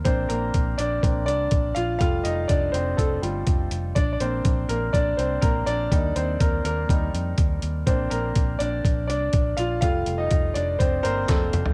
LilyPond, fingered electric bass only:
\new Staff \with { instrumentName = "Fingered electric bass" } { \clef bass \time 4/4 \key bes \major \tempo 4 = 123 bes,,8 bes,,8 bes,,8 bes,,8 bes,,8 c,8 bes,,8 bes,,8 | f,,8 f,,8 f,,8 f,,8 f,,8 g,,8 f,,8 f,,8 | bes,,8 bes,,8 bes,,8 bes,,8 bes,,8 c,8 bes,,8 bes,,8 | ees,8 ees,8 ees,8 ees,8 ees,8 f,8 ees,8 ees,8 |
bes,,8 bes,,8 bes,,8 bes,,8 bes,,8 c,8 bes,,8 bes,,8 | f,,8 f,,8 f,,8 f,,8 f,,8 g,,8 f,,8 f,,8 | }